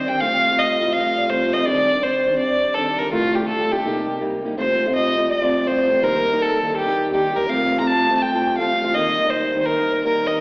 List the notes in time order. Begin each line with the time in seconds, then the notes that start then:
Already playing: C3 G3
0.08 D#3 G3 C4 D4 G5
0.21 F3 A3 C4 F4 F5
0.50 A3 C4 F4
0.58 D#5
0.81 F3 A3 C4 F4 D#5
0.87 A3 C4 F4
0.93 F5
1.17 D5
1.30 F3 A3 C4 F4 C5
1.53 F3 A3 C4 F4 D#5
1.65 D#3 G3 C4 D4 D5
1.90 D5
1.97 G3 C4 D4
2.03 C5
2.26 D#3 G3 C4 D4
2.32 G3 C4 D4
2.38 D5
2.74 D#3 G3 C4 D4 A4
2.99 D#3 G3 C4 D4 A#4
3.12 D2 A2 D3 A3 D4 F4
3.35 G4
3.42 D3 A3 D4 F4
3.48 A4
3.72 D3 A3 D4 F4 G4
3.78 D3 A3 D4 F4
3.85 C3 G3 A#3 D#4 G4
4.21 G3 A#3 D#4 G4
4.44 G3 A#3 D#4 G4
4.57 C3 F3 G3 A3 C4 F4 C5
4.87 A3 C4 F4 F5
4.93 D#5
5.17 F3 A3 C4 F4
5.30 D5
5.42 A3 C4 F4
5.66 F3 A3 C4 F4 C5
5.90 F3 A3 C4 F4
6.03 D#3 G3 A#3 D#4 A#4
6.33 G3 A#3 D#4
6.39 A4
6.63 D#3 G3 A#3 D#4 A4
6.75 G4
6.86 G3 A#3 D#4
7.12 D#3 G3 A#3 D#4 G4
7.35 D#3 G3 A#3 D#4 A#4
7.48 F3 A3 C4 F4 F5
7.80 A3 C4 F4 A#5
7.85 A5
8.10 F3 A3 C4 F4
8.17 A5
8.22 G5
8.35 A3 C4 F4 A5
8.47 G5
8.58 F3 A3 C4 F4 F5
8.82 F3 A3 C4 F4
8.88 F5
8.94 D#3 G3 A#3 D#4 D#5
9.26 G3 A#3 D#4 D5
9.30 C5
9.55 D#3 G3 A#3 D#4
9.61 C5
9.65 A#4
9.79 G3 A#3 D#4
10.04 D#3 G3 A#3 D#4 A#4
10.27 D#3 G3 A#3 D#4 D#5